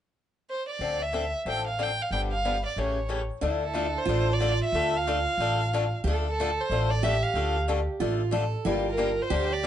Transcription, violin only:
0.50 C5
0.69 D5
1.02 E5
1.49 G5
1.67 F5
1.83 G5
2.02 F5
2.12 G5
2.32 F5
2.66 D5
2.79 C#5
3.63 A4
3.98 C5
4.33 D5
4.65 E5
4.97 F5
6.30 A4
6.61 C5
6.90 D5
7.03 E5
7.23 F5
8.90 A#4
9.22 C5
9.53 D5

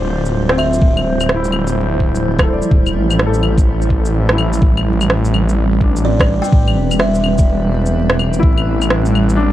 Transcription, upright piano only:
Already playing: D4
0.50 C4
1.35 E4
2.43 A4
2.48 C5
2.53 D5
3.26 A4
4.33 E4
5.83 D4
8.39 E4
9.36 D4

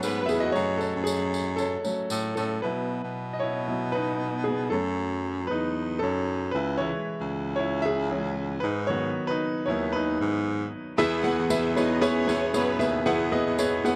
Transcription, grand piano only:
Already playing: F#3 A3 C#4 F#4 A4 B4 C#5 F#5
0.26 G#4 E5
0.40 F#4 D#5
0.52 F#3 A3 C#4 F#4 C#5
0.77 C#4 A4
1.04 C#4 G#4
1.56 C#4 A4
1.84 F#3 A3 C#4
2.36 C#4 A4
2.62 F#3 B3 E4 B4
3.33 D#5
3.40 E4 C#5
3.68 F#3 B3 E4
3.92 D#4 B4
4.44 B3 G#4
4.70 F#3 A3 C#4 A4
5.47 D#4 B4
5.99 C#4 A4
6.51 E4 B4
6.77 E3 G#3 C#4 C#5
6.82 E4
7.56 E4 C#5
7.82 G#4 E5
8.10 E3 G#3 C#4
8.60 D#4 B4
8.87 D#3 F#3 B3 F#4 C#5
9.27 D#4 B4
9.66 D#3 F#3 B3 E4 C#5
9.93 D#4 B4
10.98 E3 B3 E4 G#4 B4 E5
11.24 B3 E4 G#4 B4 F#5
11.50 B3 E4 G#4 B4 E5
11.76 B3 E4 G#4 B4 C#5
12.01 B3 E4 G#4 B4 C#5
12.27 B3 E4 G#4 B4 C#5
12.54 B3 E4 G#4 B4 C#5
12.79 B3 E4 G#4 B4 E5
13.06 E3 B3 E4 G#4 B4 F#5
13.32 B3 E4 G#4 B4 D#5
13.58 B3 E4 G#4 B4 C#5
13.84 B3 E4 G#4 B4 F#5

